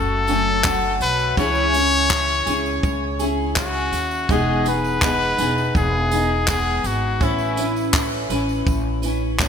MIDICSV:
0, 0, Header, 1, 5, 480
1, 0, Start_track
1, 0, Key_signature, 4, "major"
1, 0, Tempo, 729395
1, 903, Time_signature, 4, 2, 24, 8
1, 6240, End_track
2, 0, Start_track
2, 0, Title_t, "Trumpet"
2, 0, Program_c, 0, 56
2, 0, Note_on_c, 0, 69, 105
2, 641, Note_off_c, 0, 69, 0
2, 672, Note_on_c, 0, 71, 98
2, 891, Note_off_c, 0, 71, 0
2, 913, Note_on_c, 0, 73, 121
2, 2145, Note_off_c, 0, 73, 0
2, 2351, Note_on_c, 0, 66, 95
2, 2843, Note_on_c, 0, 68, 88
2, 2853, Note_off_c, 0, 66, 0
2, 3073, Note_off_c, 0, 68, 0
2, 3082, Note_on_c, 0, 71, 102
2, 3766, Note_off_c, 0, 71, 0
2, 3797, Note_on_c, 0, 68, 89
2, 4243, Note_off_c, 0, 68, 0
2, 4275, Note_on_c, 0, 68, 85
2, 4518, Note_on_c, 0, 66, 82
2, 4528, Note_off_c, 0, 68, 0
2, 4761, Note_on_c, 0, 64, 77
2, 4771, Note_off_c, 0, 66, 0
2, 5232, Note_off_c, 0, 64, 0
2, 6240, End_track
3, 0, Start_track
3, 0, Title_t, "Steel-string acoustic guitar"
3, 0, Program_c, 1, 25
3, 0, Note_on_c, 1, 54, 45
3, 0, Note_on_c, 1, 57, 48
3, 0, Note_on_c, 1, 61, 49
3, 0, Note_on_c, 1, 66, 53
3, 170, Note_off_c, 1, 66, 0
3, 177, Note_on_c, 1, 66, 51
3, 183, Note_off_c, 1, 57, 0
3, 183, Note_off_c, 1, 61, 0
3, 185, Note_on_c, 1, 61, 49
3, 189, Note_off_c, 1, 54, 0
3, 191, Note_on_c, 1, 57, 47
3, 198, Note_on_c, 1, 54, 51
3, 410, Note_off_c, 1, 54, 0
3, 417, Note_off_c, 1, 57, 0
3, 418, Note_on_c, 1, 54, 51
3, 420, Note_off_c, 1, 66, 0
3, 422, Note_off_c, 1, 61, 0
3, 424, Note_on_c, 1, 57, 61
3, 430, Note_on_c, 1, 61, 57
3, 436, Note_on_c, 1, 66, 63
3, 901, Note_off_c, 1, 54, 0
3, 901, Note_on_c, 1, 49, 74
3, 904, Note_off_c, 1, 57, 0
3, 906, Note_on_c, 1, 52, 80
3, 908, Note_off_c, 1, 61, 0
3, 908, Note_on_c, 1, 61, 78
3, 909, Note_off_c, 1, 66, 0
3, 913, Note_on_c, 1, 64, 84
3, 915, Note_on_c, 1, 68, 90
3, 1134, Note_off_c, 1, 68, 0
3, 1141, Note_on_c, 1, 68, 52
3, 1142, Note_off_c, 1, 49, 0
3, 1145, Note_off_c, 1, 52, 0
3, 1146, Note_off_c, 1, 61, 0
3, 1146, Note_off_c, 1, 64, 0
3, 1154, Note_on_c, 1, 64, 48
3, 1160, Note_on_c, 1, 61, 46
3, 1379, Note_off_c, 1, 61, 0
3, 1380, Note_on_c, 1, 52, 63
3, 1382, Note_off_c, 1, 68, 0
3, 1386, Note_off_c, 1, 64, 0
3, 1387, Note_on_c, 1, 61, 58
3, 1394, Note_on_c, 1, 64, 62
3, 1398, Note_on_c, 1, 68, 64
3, 1611, Note_off_c, 1, 68, 0
3, 1619, Note_on_c, 1, 68, 64
3, 1621, Note_off_c, 1, 64, 0
3, 1622, Note_off_c, 1, 52, 0
3, 1625, Note_off_c, 1, 61, 0
3, 1629, Note_on_c, 1, 64, 59
3, 1637, Note_on_c, 1, 61, 48
3, 2098, Note_off_c, 1, 68, 0
3, 2101, Note_on_c, 1, 68, 60
3, 2110, Note_off_c, 1, 61, 0
3, 2110, Note_off_c, 1, 64, 0
3, 2112, Note_on_c, 1, 64, 52
3, 2120, Note_on_c, 1, 61, 47
3, 2338, Note_off_c, 1, 61, 0
3, 2342, Note_off_c, 1, 68, 0
3, 2344, Note_off_c, 1, 64, 0
3, 2346, Note_on_c, 1, 61, 57
3, 2352, Note_on_c, 1, 64, 57
3, 2358, Note_on_c, 1, 68, 65
3, 2822, Note_on_c, 1, 52, 73
3, 2825, Note_off_c, 1, 61, 0
3, 2826, Note_on_c, 1, 56, 81
3, 2829, Note_off_c, 1, 64, 0
3, 2829, Note_on_c, 1, 59, 83
3, 2831, Note_off_c, 1, 68, 0
3, 2832, Note_on_c, 1, 63, 89
3, 2834, Note_on_c, 1, 68, 91
3, 3047, Note_off_c, 1, 68, 0
3, 3055, Note_on_c, 1, 68, 57
3, 3058, Note_off_c, 1, 63, 0
3, 3062, Note_off_c, 1, 52, 0
3, 3064, Note_off_c, 1, 56, 0
3, 3066, Note_off_c, 1, 59, 0
3, 3066, Note_on_c, 1, 63, 48
3, 3075, Note_on_c, 1, 59, 40
3, 3295, Note_on_c, 1, 56, 53
3, 3296, Note_off_c, 1, 59, 0
3, 3299, Note_off_c, 1, 68, 0
3, 3302, Note_off_c, 1, 63, 0
3, 3303, Note_on_c, 1, 59, 56
3, 3310, Note_on_c, 1, 63, 61
3, 3314, Note_on_c, 1, 68, 67
3, 3531, Note_off_c, 1, 68, 0
3, 3539, Note_off_c, 1, 56, 0
3, 3539, Note_on_c, 1, 68, 56
3, 3541, Note_off_c, 1, 63, 0
3, 3543, Note_off_c, 1, 59, 0
3, 3548, Note_on_c, 1, 63, 46
3, 3558, Note_on_c, 1, 59, 46
3, 4012, Note_off_c, 1, 68, 0
3, 4020, Note_on_c, 1, 68, 53
3, 4022, Note_off_c, 1, 63, 0
3, 4030, Note_on_c, 1, 63, 48
3, 4037, Note_off_c, 1, 59, 0
3, 4039, Note_on_c, 1, 59, 46
3, 4258, Note_off_c, 1, 59, 0
3, 4259, Note_on_c, 1, 56, 62
3, 4262, Note_off_c, 1, 68, 0
3, 4264, Note_off_c, 1, 63, 0
3, 4266, Note_on_c, 1, 59, 58
3, 4272, Note_on_c, 1, 63, 64
3, 4279, Note_on_c, 1, 68, 57
3, 4738, Note_off_c, 1, 56, 0
3, 4741, Note_on_c, 1, 57, 76
3, 4743, Note_off_c, 1, 59, 0
3, 4745, Note_off_c, 1, 63, 0
3, 4746, Note_on_c, 1, 61, 75
3, 4748, Note_on_c, 1, 64, 84
3, 4750, Note_off_c, 1, 68, 0
3, 4753, Note_on_c, 1, 71, 84
3, 4969, Note_off_c, 1, 71, 0
3, 4977, Note_on_c, 1, 71, 54
3, 4981, Note_off_c, 1, 64, 0
3, 4982, Note_off_c, 1, 57, 0
3, 4984, Note_off_c, 1, 61, 0
3, 4989, Note_on_c, 1, 64, 49
3, 4996, Note_on_c, 1, 61, 42
3, 5218, Note_on_c, 1, 57, 59
3, 5219, Note_off_c, 1, 61, 0
3, 5220, Note_off_c, 1, 71, 0
3, 5223, Note_off_c, 1, 64, 0
3, 5227, Note_on_c, 1, 61, 64
3, 5231, Note_on_c, 1, 64, 70
3, 5238, Note_on_c, 1, 71, 63
3, 5451, Note_off_c, 1, 71, 0
3, 5459, Note_on_c, 1, 71, 60
3, 5461, Note_off_c, 1, 57, 0
3, 5464, Note_off_c, 1, 64, 0
3, 5465, Note_off_c, 1, 61, 0
3, 5472, Note_on_c, 1, 64, 60
3, 5478, Note_on_c, 1, 61, 51
3, 5928, Note_off_c, 1, 71, 0
3, 5936, Note_on_c, 1, 71, 56
3, 5939, Note_off_c, 1, 64, 0
3, 5947, Note_on_c, 1, 64, 60
3, 5954, Note_off_c, 1, 61, 0
3, 5956, Note_on_c, 1, 61, 52
3, 6178, Note_off_c, 1, 61, 0
3, 6179, Note_off_c, 1, 71, 0
3, 6179, Note_on_c, 1, 57, 62
3, 6183, Note_off_c, 1, 64, 0
3, 6186, Note_on_c, 1, 61, 71
3, 6190, Note_on_c, 1, 64, 61
3, 6198, Note_on_c, 1, 71, 72
3, 6240, Note_off_c, 1, 57, 0
3, 6240, Note_off_c, 1, 61, 0
3, 6240, Note_off_c, 1, 64, 0
3, 6240, Note_off_c, 1, 71, 0
3, 6240, End_track
4, 0, Start_track
4, 0, Title_t, "Upright bass"
4, 0, Program_c, 2, 32
4, 0, Note_on_c, 2, 30, 100
4, 636, Note_off_c, 2, 30, 0
4, 660, Note_on_c, 2, 35, 86
4, 882, Note_off_c, 2, 35, 0
4, 904, Note_on_c, 2, 37, 103
4, 1597, Note_off_c, 2, 37, 0
4, 1624, Note_on_c, 2, 37, 97
4, 1845, Note_off_c, 2, 37, 0
4, 1865, Note_on_c, 2, 37, 100
4, 2557, Note_off_c, 2, 37, 0
4, 2580, Note_on_c, 2, 39, 79
4, 2802, Note_off_c, 2, 39, 0
4, 2823, Note_on_c, 2, 28, 101
4, 3517, Note_off_c, 2, 28, 0
4, 3544, Note_on_c, 2, 28, 90
4, 3764, Note_off_c, 2, 28, 0
4, 3784, Note_on_c, 2, 28, 101
4, 4477, Note_off_c, 2, 28, 0
4, 4502, Note_on_c, 2, 32, 81
4, 4723, Note_off_c, 2, 32, 0
4, 4741, Note_on_c, 2, 33, 101
4, 5436, Note_off_c, 2, 33, 0
4, 5460, Note_on_c, 2, 33, 95
4, 5682, Note_off_c, 2, 33, 0
4, 5704, Note_on_c, 2, 33, 103
4, 6240, Note_off_c, 2, 33, 0
4, 6240, End_track
5, 0, Start_track
5, 0, Title_t, "Drums"
5, 180, Note_on_c, 9, 54, 47
5, 184, Note_off_c, 9, 54, 0
5, 184, Note_on_c, 9, 54, 56
5, 250, Note_off_c, 9, 54, 0
5, 422, Note_on_c, 9, 39, 101
5, 425, Note_on_c, 9, 36, 108
5, 429, Note_on_c, 9, 54, 77
5, 488, Note_off_c, 9, 39, 0
5, 491, Note_off_c, 9, 36, 0
5, 495, Note_off_c, 9, 54, 0
5, 663, Note_on_c, 9, 54, 61
5, 668, Note_off_c, 9, 54, 0
5, 668, Note_on_c, 9, 54, 55
5, 734, Note_off_c, 9, 54, 0
5, 786, Note_on_c, 9, 54, 30
5, 851, Note_off_c, 9, 54, 0
5, 904, Note_on_c, 9, 36, 115
5, 912, Note_on_c, 9, 54, 47
5, 970, Note_off_c, 9, 36, 0
5, 978, Note_off_c, 9, 54, 0
5, 1017, Note_on_c, 9, 54, 29
5, 1083, Note_off_c, 9, 54, 0
5, 1143, Note_on_c, 9, 54, 47
5, 1147, Note_off_c, 9, 54, 0
5, 1147, Note_on_c, 9, 54, 67
5, 1213, Note_off_c, 9, 54, 0
5, 1269, Note_on_c, 9, 54, 36
5, 1335, Note_off_c, 9, 54, 0
5, 1381, Note_on_c, 9, 54, 76
5, 1383, Note_on_c, 9, 36, 115
5, 1385, Note_on_c, 9, 39, 111
5, 1447, Note_off_c, 9, 54, 0
5, 1449, Note_off_c, 9, 36, 0
5, 1450, Note_off_c, 9, 39, 0
5, 1624, Note_on_c, 9, 54, 72
5, 1626, Note_off_c, 9, 54, 0
5, 1626, Note_on_c, 9, 54, 48
5, 1692, Note_off_c, 9, 54, 0
5, 1750, Note_on_c, 9, 54, 31
5, 1815, Note_off_c, 9, 54, 0
5, 1865, Note_on_c, 9, 36, 110
5, 1870, Note_on_c, 9, 54, 43
5, 1931, Note_off_c, 9, 36, 0
5, 1936, Note_off_c, 9, 54, 0
5, 2101, Note_on_c, 9, 54, 51
5, 2105, Note_off_c, 9, 54, 0
5, 2105, Note_on_c, 9, 54, 57
5, 2171, Note_off_c, 9, 54, 0
5, 2343, Note_on_c, 9, 39, 97
5, 2346, Note_on_c, 9, 36, 106
5, 2348, Note_on_c, 9, 54, 79
5, 2409, Note_off_c, 9, 39, 0
5, 2412, Note_off_c, 9, 36, 0
5, 2414, Note_off_c, 9, 54, 0
5, 2583, Note_on_c, 9, 54, 60
5, 2587, Note_off_c, 9, 54, 0
5, 2587, Note_on_c, 9, 54, 54
5, 2653, Note_off_c, 9, 54, 0
5, 2704, Note_on_c, 9, 54, 31
5, 2770, Note_off_c, 9, 54, 0
5, 2824, Note_on_c, 9, 36, 112
5, 2833, Note_on_c, 9, 54, 47
5, 2890, Note_off_c, 9, 36, 0
5, 2899, Note_off_c, 9, 54, 0
5, 3064, Note_on_c, 9, 54, 45
5, 3066, Note_off_c, 9, 54, 0
5, 3066, Note_on_c, 9, 54, 68
5, 3131, Note_off_c, 9, 54, 0
5, 3188, Note_on_c, 9, 54, 34
5, 3254, Note_off_c, 9, 54, 0
5, 3303, Note_on_c, 9, 36, 113
5, 3303, Note_on_c, 9, 39, 110
5, 3303, Note_on_c, 9, 54, 77
5, 3369, Note_off_c, 9, 36, 0
5, 3369, Note_off_c, 9, 39, 0
5, 3369, Note_off_c, 9, 54, 0
5, 3543, Note_on_c, 9, 54, 67
5, 3547, Note_off_c, 9, 54, 0
5, 3547, Note_on_c, 9, 54, 50
5, 3613, Note_off_c, 9, 54, 0
5, 3671, Note_on_c, 9, 54, 29
5, 3737, Note_off_c, 9, 54, 0
5, 3784, Note_on_c, 9, 36, 110
5, 3793, Note_on_c, 9, 54, 45
5, 3850, Note_off_c, 9, 36, 0
5, 3859, Note_off_c, 9, 54, 0
5, 4023, Note_on_c, 9, 54, 49
5, 4024, Note_off_c, 9, 54, 0
5, 4024, Note_on_c, 9, 54, 59
5, 4090, Note_off_c, 9, 54, 0
5, 4262, Note_on_c, 9, 39, 98
5, 4265, Note_on_c, 9, 36, 103
5, 4271, Note_on_c, 9, 54, 77
5, 4327, Note_off_c, 9, 39, 0
5, 4330, Note_off_c, 9, 36, 0
5, 4337, Note_off_c, 9, 54, 0
5, 4503, Note_on_c, 9, 54, 64
5, 4510, Note_off_c, 9, 54, 0
5, 4510, Note_on_c, 9, 54, 55
5, 4576, Note_off_c, 9, 54, 0
5, 4743, Note_on_c, 9, 36, 115
5, 4755, Note_on_c, 9, 54, 46
5, 4809, Note_off_c, 9, 36, 0
5, 4821, Note_off_c, 9, 54, 0
5, 4859, Note_on_c, 9, 54, 31
5, 4925, Note_off_c, 9, 54, 0
5, 4984, Note_on_c, 9, 54, 71
5, 4986, Note_off_c, 9, 54, 0
5, 4986, Note_on_c, 9, 54, 47
5, 5052, Note_off_c, 9, 54, 0
5, 5108, Note_on_c, 9, 54, 35
5, 5174, Note_off_c, 9, 54, 0
5, 5221, Note_on_c, 9, 54, 80
5, 5222, Note_on_c, 9, 36, 114
5, 5222, Note_on_c, 9, 39, 109
5, 5286, Note_off_c, 9, 54, 0
5, 5287, Note_off_c, 9, 39, 0
5, 5288, Note_off_c, 9, 36, 0
5, 5463, Note_on_c, 9, 54, 70
5, 5465, Note_off_c, 9, 54, 0
5, 5465, Note_on_c, 9, 54, 45
5, 5531, Note_off_c, 9, 54, 0
5, 5587, Note_on_c, 9, 54, 28
5, 5652, Note_off_c, 9, 54, 0
5, 5703, Note_on_c, 9, 36, 109
5, 5708, Note_on_c, 9, 54, 45
5, 5769, Note_off_c, 9, 36, 0
5, 5774, Note_off_c, 9, 54, 0
5, 5941, Note_on_c, 9, 54, 49
5, 5943, Note_off_c, 9, 54, 0
5, 5943, Note_on_c, 9, 54, 56
5, 6009, Note_off_c, 9, 54, 0
5, 6181, Note_on_c, 9, 39, 105
5, 6184, Note_on_c, 9, 36, 107
5, 6188, Note_on_c, 9, 54, 77
5, 6240, Note_off_c, 9, 36, 0
5, 6240, Note_off_c, 9, 39, 0
5, 6240, Note_off_c, 9, 54, 0
5, 6240, End_track
0, 0, End_of_file